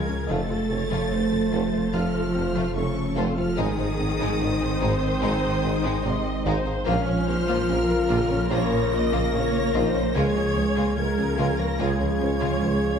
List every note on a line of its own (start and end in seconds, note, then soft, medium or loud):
0.00 0.31 C#2 medium
0.00 0.12 C#3 medium
0.00 0.26 C#3 medium
0.00 0.12 F3 medium
0.00 0.26 F3 medium
0.00 0.28 G#3 medium
0.00 0.26 F4 medium
0.00 0.29 G#4 medium
0.00 0.30 G#4 medium
0.00 0.28 A#4 medium
0.00 0.30 G#6 loud
0.09 0.18 C#2 medium
0.09 0.22 C#4 medium
0.09 0.17 F4 medium
0.09 0.17 C#5 medium
0.27 3.60 F1 medium
0.27 0.38 F1 medium
0.27 3.54 F3 medium
0.27 0.42 F3 loud
0.27 3.58 A3 medium
0.27 1.91 A3 loud
0.27 0.49 A3 medium
0.27 3.55 A3 medium
0.27 3.54 F4 medium
0.27 0.49 F4 medium
0.27 3.58 A4 medium
0.27 1.94 A4 loud
0.27 0.71 A4 medium
0.27 2.71 D#5 medium
0.27 1.94 A6 loud
0.50 0.59 F1 medium
0.50 0.58 F4 medium
0.50 0.63 F4 medium
0.50 0.58 C5 medium
0.71 0.79 F1 medium
0.71 0.80 F1 medium
0.71 0.83 A3 medium
0.71 0.79 C4 medium
0.71 0.79 A4 medium
0.71 1.12 C#5 medium
0.91 1.00 F1 medium
0.91 1.03 F3 loud
0.91 1.10 A3 medium
0.91 1.10 F4 medium
1.11 1.20 F1 medium
1.11 1.24 A3 medium
1.11 1.19 F4 medium
1.11 1.20 C5 medium
1.11 1.94 C5 medium
1.31 1.41 F1 medium
1.31 1.39 C4 medium
1.31 1.45 F4 medium
1.31 1.40 A4 medium
1.52 1.61 F1 medium
1.52 1.65 F3 loud
1.52 1.72 A3 medium
1.52 1.71 F4 medium
1.72 1.82 F1 medium
1.72 1.86 A3 medium
1.72 1.80 F4 medium
1.72 1.80 C5 medium
1.93 2.02 F1 medium
1.93 2.03 F1 medium
1.93 2.06 F3 loud
1.93 2.75 F3 loud
1.93 2.13 A3 medium
1.93 2.12 F4 medium
1.93 2.77 F4 loud
1.93 2.35 A4 medium
1.93 2.76 F6 loud
2.14 2.23 F1 medium
2.14 2.22 F4 medium
2.14 2.27 F4 medium
2.14 2.22 C5 medium
2.34 2.43 F1 medium
2.34 2.44 F1 medium
2.34 2.42 C4 medium
2.34 2.47 C4 medium
2.34 2.43 A4 medium
2.34 2.76 C5 medium
2.56 2.64 F1 medium
2.56 2.68 F3 loud
2.56 2.75 A3 medium
2.56 2.74 F4 medium
2.75 2.84 F1 medium
2.75 2.85 F1 medium
2.75 3.16 C#3 medium
2.75 2.89 A3 medium
2.75 3.17 C#4 loud
2.75 2.83 F4 medium
2.75 3.57 A4 medium
2.75 2.84 C5 medium
2.75 3.16 C#6 loud
3.16 3.25 F1 loud
3.16 3.26 F1 medium
3.16 3.38 C3 medium
3.16 3.30 F3 loud
3.16 3.36 A3 medium
3.16 3.38 C4 medium
3.16 3.36 F4 loud
3.16 3.38 C6 medium
3.37 3.47 F1 medium
3.37 3.58 F3 medium
3.37 3.58 F4 medium
3.37 3.45 F4 medium
3.37 3.51 F4 medium
3.37 3.46 C5 medium
3.37 3.58 F6 loud
3.57 3.66 G#1 loud
3.57 6.89 G#1 medium
3.57 3.67 G#1 loud
3.57 5.21 D#3 loud
3.57 6.71 D#3 loud
3.57 3.77 G#3 loud
3.57 6.87 G#3 loud
3.57 3.71 G#3 loud
3.57 6.83 C4 medium
3.57 6.71 C4 loud
3.57 3.77 D#4 loud
3.57 6.87 D#4 medium
3.57 5.06 D#4 loud
3.57 4.41 G#4 medium
3.57 6.83 C5 medium
3.57 5.22 D#6 loud
3.79 3.88 G#1 medium
3.79 3.87 D#4 medium
3.79 3.91 G#4 medium
3.79 3.87 C5 medium
3.99 4.07 G#1 medium
3.99 4.08 G#1 medium
3.99 4.08 C4 medium
3.99 4.12 C4 medium
3.99 4.08 G#4 medium
4.20 4.29 G#1 medium
4.20 4.39 G#3 loud
4.20 4.33 G#3 loud
4.20 4.39 D#4 medium
4.40 4.49 G#1 medium
4.40 4.53 C4 medium
4.40 4.48 D#4 medium
4.40 4.48 C5 medium
4.40 6.05 C5 loud
4.61 4.70 G#1 medium
4.61 4.69 C4 medium
4.61 4.69 G#4 medium
4.61 4.74 G#4 medium
4.80 4.90 G#1 medium
4.80 4.91 G#1 loud
4.80 5.00 G#3 medium
4.80 4.95 G#3 loud
4.80 7.24 C4 medium
4.80 5.00 D#4 loud
4.80 7.24 C5 medium
5.01 5.11 G#1 medium
5.01 5.15 C4 medium
5.01 5.10 D#4 medium
5.01 5.09 C5 medium
5.21 5.31 G#1 loud
5.21 6.03 D#3 loud
5.21 5.41 G#3 loud
5.21 5.36 G#3 loud
5.21 5.41 D#4 loud
5.21 6.04 D#4 loud
5.21 6.04 D#6 loud
5.43 5.52 G#1 medium
5.43 5.51 D#4 medium
5.43 5.56 G#4 medium
5.43 5.51 C5 medium
5.63 5.72 G#1 medium
5.63 5.71 C4 medium
5.63 5.77 D#4 medium
5.63 5.71 G#4 medium
5.84 5.92 G#1 loud
5.84 6.03 G#3 loud
5.84 5.97 G#3 loud
5.84 6.02 D#4 medium
6.04 6.13 G#1 medium
6.04 6.45 C3 medium
6.04 6.46 C4 medium
6.04 6.18 C4 medium
6.04 6.12 D#4 medium
6.04 6.12 C5 medium
6.04 6.46 D#5 medium
6.04 6.46 C6 medium
6.46 6.54 G#1 loud
6.46 6.55 G#1 loud
6.46 6.65 G#3 loud
6.46 6.59 G#3 medium
6.46 6.64 D#4 loud
6.46 6.87 C5 loud
6.46 8.89 F5 medium
6.65 6.75 G#1 medium
6.65 6.73 D#4 medium
6.65 6.79 G#4 medium
6.65 6.73 C5 medium
6.86 6.95 A#1 loud
6.86 10.18 A#1 medium
6.86 10.16 C#3 medium
6.86 10.12 C#3 loud
6.86 8.47 F3 loud
6.86 10.14 F3 medium
6.86 7.06 A#3 loud
6.86 10.15 A#3 medium
6.86 7.00 A#3 loud
6.86 7.29 C#4 loud
6.86 7.06 F4 loud
6.86 8.47 F4 loud
6.86 10.13 F4 loud
6.86 10.16 A#4 medium
6.86 8.48 F6 loud
7.06 7.16 A#1 medium
7.06 7.14 C#4 medium
7.06 7.20 A#4 medium
7.06 7.14 C#5 medium
7.27 7.36 A#1 medium
7.27 7.37 A#1 medium
7.27 7.35 A#3 medium
7.27 7.41 C#4 medium
7.27 7.36 A#4 medium
7.27 7.70 C5 loud
7.48 7.57 A#1 medium
7.48 7.67 A#3 loud
7.48 7.61 A#3 loud
7.48 7.67 F4 loud
7.68 7.78 A#1 medium
7.68 7.76 C#4 medium
7.68 7.82 C#4 medium
7.68 8.52 A#4 loud
7.68 7.76 C#5 medium
7.88 7.99 A#1 medium
7.88 7.96 A#3 medium
7.88 7.96 A#4 medium
7.88 8.03 A#4 medium
8.09 8.19 A#1 loud
8.09 8.20 A#1 loud
8.09 8.29 A#3 loud
8.09 8.23 A#3 loud
8.09 8.29 F4 loud
8.30 8.40 A#1 medium
8.30 8.38 C#4 medium
8.30 8.44 C#4 medium
8.30 8.38 C#5 medium
8.51 8.60 A#1 loud
8.51 8.70 A#3 medium
8.51 8.64 A#3 loud
8.51 10.16 A#3 loud
8.51 8.70 F4 loud
8.51 10.16 A#4 loud
8.51 8.93 C#5 loud
8.51 10.16 A#6 loud
8.72 8.81 A#1 medium
8.72 8.80 C#4 medium
8.72 8.85 A#4 medium
8.72 8.80 C#5 medium
8.92 9.01 A#1 medium
8.92 9.02 A#1 medium
8.92 9.00 A#3 medium
8.92 9.05 F4 medium
8.92 9.00 A#4 medium
8.92 9.34 D#5 medium
9.12 9.22 A#1 loud
9.12 9.32 A#3 loud
9.12 9.26 A#3 loud
9.12 9.32 F4 medium
9.33 9.42 A#1 medium
9.33 9.43 A#1 medium
9.33 9.46 C#4 medium
9.33 9.42 C#4 medium
9.33 9.42 C#5 medium
9.33 9.75 C#5 loud
9.75 9.83 A#1 loud
9.75 9.87 A#3 loud
9.75 9.94 A#3 loud
9.75 12.18 D#4 medium
9.75 9.94 F4 loud
9.75 10.16 C5 medium
9.75 12.18 D#5 medium
9.94 10.04 A#1 medium
9.94 10.02 C#4 medium
9.94 10.08 A#4 medium
9.94 10.02 C#5 loud
10.15 10.24 C#2 loud
10.15 12.99 C#2 medium
10.15 10.24 C#2 loud
10.15 10.28 C#3 loud
10.15 12.99 C#3 loud
10.15 12.99 F3 medium
10.15 10.35 G#3 loud
10.15 12.99 G#3 medium
10.15 10.96 G#3 loud
10.15 12.99 C#4 loud
10.15 12.99 F4 loud
10.15 10.35 F4 loud
10.15 10.96 G#4 loud
10.15 12.99 C#5 loud
10.15 10.98 C#5 loud
10.15 10.97 G#6 loud
10.36 10.45 C#2 medium
10.36 10.49 C#4 medium
10.36 10.44 F4 medium
10.36 10.44 C#5 medium
10.55 10.65 C#2 medium
10.55 10.69 F3 medium
10.55 10.63 C#4 medium
10.55 10.64 G#4 medium
10.76 10.86 C#2 medium
10.76 10.90 C#3 loud
10.76 10.96 G#3 loud
10.76 10.95 F4 medium
10.96 11.07 C#2 medium
10.96 11.10 F3 medium
10.96 11.58 G#3 loud
10.96 11.04 F4 medium
10.96 11.59 G#4 loud
10.96 11.79 A#4 loud
10.96 11.04 C#5 medium
10.96 11.58 G#6 loud
11.17 11.28 C#2 medium
11.17 11.25 C#4 medium
11.17 11.31 C#4 medium
11.17 11.25 G#4 medium
11.38 11.47 C#2 loud
11.38 11.48 C#2 loud
11.38 11.51 C#3 loud
11.38 11.58 G#3 loud
11.38 11.58 F4 loud
11.59 11.68 C#2 medium
11.59 11.72 F3 medium
11.59 11.80 A#3 medium
11.59 11.67 F4 medium
11.59 11.80 A#4 loud
11.59 11.67 C#5 medium
11.59 11.81 A#6 loud
11.79 11.89 C#2 loud
11.79 11.90 C#2 loud
11.79 11.92 C#3 loud
11.79 11.99 G#3 loud
11.79 12.99 G#3 loud
11.79 11.98 F4 loud
11.79 12.22 G#4 medium
11.79 12.99 G#4 loud
11.79 12.99 G#6 loud
12.00 12.09 C#2 medium
12.00 12.13 C#4 medium
12.00 12.08 F4 medium
12.00 12.08 C#5 medium
12.20 12.30 C#2 medium
12.20 12.31 C#2 medium
12.20 12.34 G#3 medium
12.20 12.28 C#4 medium
12.20 12.99 C#4 medium
12.20 12.28 G#4 medium
12.20 12.99 C#5 medium
12.40 12.51 C#2 loud
12.40 12.55 C#3 loud
12.40 12.60 G#3 medium
12.40 12.60 F4 loud
12.61 12.71 C#2 medium
12.61 12.75 F3 medium
12.61 12.69 F4 medium
12.61 12.69 C#5 medium